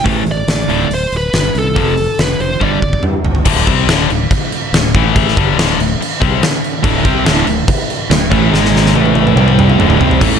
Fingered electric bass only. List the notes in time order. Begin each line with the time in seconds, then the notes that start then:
0.06 A1
0.27 A1
0.48 A1
0.68 D1
0.90 D1
1.12 D1
1.33 G1
1.55 C2
1.76 F1
2.19 F1
2.40 F1
2.61 G1
2.82 G1
3.04 G2
3.24 G1
3.46 D1
3.67 C2
3.88 D1
4.10 D1
4.31 muted fingered electric bass stroke
4.73 D1
4.95 A1
5.37 G1
5.57 D1
5.79 D1
6.00 muted fingered electric bass stroke
6.22 C2
6.43 muted fingered electric bass stroke
6.84 D1
7.05 C2
7.26 D1
7.47 D1
7.68 muted fingered electric bass stroke
8.10 D1
8.32 A1
8.51 G#1
8.94 A1
9.36 C2
9.80 D1
10.00 C2
10.22 A1